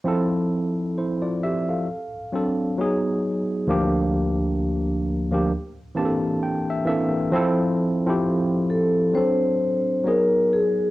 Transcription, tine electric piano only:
0.04 F3 C4 E4 A4
0.98 E4 C5
1.22 F4 D5
1.43 G4 E5
1.69 A4 F5
2.32 F#3 C4 D4 A4
2.77 F#3 B3 D#4 G#4
3.67 D2 F3 A#3 D4 G4
5.30 D2 F3 A#3 D4 G4
5.95 E3 A#3 C4 D4 G4 A5
6.05 A4
6.43 G5
6.70 E5
6.85 E3 A#3 C4 D4 A4 E5
7.32 F3 C4 E4 A4
8.06 F3 C4 E4 G4
9.13 F#3 C4 D4 A4
10.04 F#3 B3 D#4 G#4

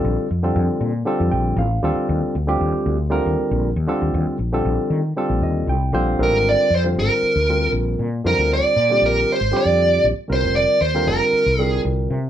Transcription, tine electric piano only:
Already playing: D3 G3 C4 F4 A4
0.43 D3 G3 C4 F4 A4
1.05 D3 G3 C4 F4 A4
1.31 G5
1.59 F5
1.83 D3 G3 C4 F4 A4
2.47 D3 G3 C4 F4 G4
3.10 D3 G3 C4 F4 A#4
3.88 D3 G3 C4 F4 A4
4.53 D3 G3 C4 F4 A4
5.16 D3 G3 C4 F4 A4
5.43 D#5
5.69 G5
5.93 D3 G3 C4 F4 C5 F5
6.19 D3 G3 C4 F4 A#4
6.84 D3 G3 C4 F4 C5
7.49 D3 G3 C4 F4 A#4
8.24 D3 G3 C4 F4 C5
8.89 D3 G3 C4 F4 G4
9.51 D3 G3 C4 F4 G4
10.28 D3 G3 C4 F4 A#4
10.94 D3 G3 C4 F4 A#4
11.59 D3 G3 C4 F4 A#4

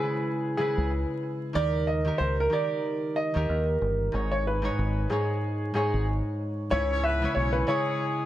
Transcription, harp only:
Already playing: C#3 G#3 E4 B4
0.58 C#3 G#3 E4 B4
1.53 D#3 D#4 G4 A#4
2.05 D#3 D#4 G4 A#4
2.50 D#3 D#4 G4 A#4
3.34 D#3 D#4 G4 A#4
4.12 G#2 G#3 D#4 C#5
4.62 G#2 G#3 D#4 C#5
5.09 G#2 G#3 D#4 C#5
5.74 G#2 G#3 D#4 C#5
6.70 C#3 G#3 E4 C#5
7.22 C#3 G#3 E4 C#5
7.67 C#3 G#3 E4 C#5

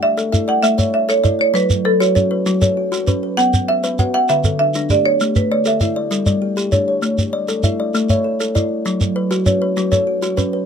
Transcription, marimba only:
0.03 E5
0.49 F#5
0.63 E5
0.94 E5
1.10 C#5
1.41 C#5
1.55 B4
1.85 A4
2.00 C#5
3.37 F#5
3.68 E5
4.14 F#5
4.29 E5
4.59 E5
4.91 D5
5.06 C#5
5.36 B4
5.52 C#5
5.67 E5

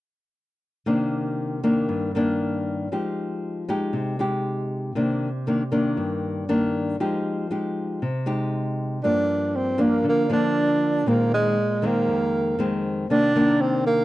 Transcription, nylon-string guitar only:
0.86 C3 D#3 A#3 D4
1.63 D#3 A#3 D4
1.89 G2
2.15 D#3 A#3 D4
2.92 F3 G#3 D#4 G4
3.68 G#3 D#4 G4
3.93 C3
4.19 G#3 D#4 G4
4.95 C3 D#3 A#3 D4
5.47 D#3 A#3 D4
5.72 D#3 A#3 D4
5.97 G2
6.49 D#3 A#3 D4
7.00 F3 G#3 D#4 G4
7.51 G#3 D#4 G4
8.02 C3
8.26 G#3 D#4 G4
9.04 G2 F3 A#3 D4
9.78 F3 A#3 D4
10.04 D3
10.30 F3 A#3 D4
11.06 A#2 D#3 G#3 C4
11.82 D#3 G#3 C4
12.08 F2
12.59 D#3 G#3 C4
13.10 C3 D#3 A#3 D4
13.36 D#3 A#3 D4

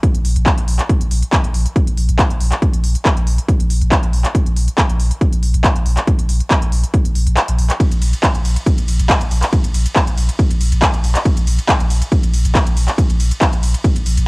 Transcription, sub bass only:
0.15 A#1
0.25 A#1
0.36 A#1
0.58 A#1
0.68 A#1
1.01 A#1
1.11 A#1
1.44 A#1
1.54 A#1
1.87 A#1
1.98 A#1
2.09 A#1
2.31 A#1
2.41 A#1
2.74 A#1
2.84 A#1
3.17 A#1
3.27 A#1
3.60 A#1
3.70 A#1
3.82 A#1
4.03 A#1
4.13 A#1
4.46 A#1
4.56 A#1
4.89 A#1
5.00 A#1
5.33 A#1
5.43 A#1
5.54 A#1
5.76 A#1
5.86 A#1
6.19 A#1
6.29 A#1
6.62 A#1
6.72 A#1
7.05 A#1
7.15 A#1
7.27 A#1
7.48 A#1
7.59 A#1
7.91 A#1
8.02 A#1
8.35 A#1
8.45 A#1
8.78 A#1
8.88 A#1
8.99 A#1
9.21 A#1
9.31 A#1
9.64 A#1
9.74 A#1
10.07 A#1
10.18 A#1
10.51 A#1
10.61 A#1
10.72 A#1
10.94 A#1
11.04 A#1
11.37 A#1
11.47 A#1
11.80 A#1
11.90 A#1
12.23 A#1
12.33 A#1
12.45 A#1
12.66 A#1
12.76 A#1
13.09 A#1
13.20 A#1
13.53 A#1
13.63 A#1
13.96 A#1
14.06 A#1
14.17 A#1

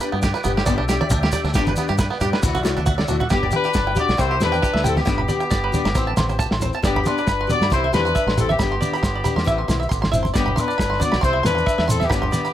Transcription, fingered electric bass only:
0.13 G2
0.44 G1
0.67 G1
0.78 B1
1.12 D2
1.44 D2
1.55 G1
1.90 G2
2.21 G2
2.43 D2
2.56 C2
2.78 D2
3.10 D2
3.31 G1
3.75 G1
4.09 B1
4.19 C2
4.41 E2
4.74 D2
5.07 G1
5.51 G1
5.85 G1
5.96 A1
6.17 A1
6.52 A1
6.83 G1
7.27 G1
7.61 G2
7.71 C2
7.94 E2
8.27 A1
8.59 G1
9.03 G1
9.36 E2
9.47 A1
9.68 B1
9.91 A1
10.12 G1
10.35 G1
10.79 G1
11.13 B1
11.23 C2
11.43 E2
11.78 E2
12.10 G1

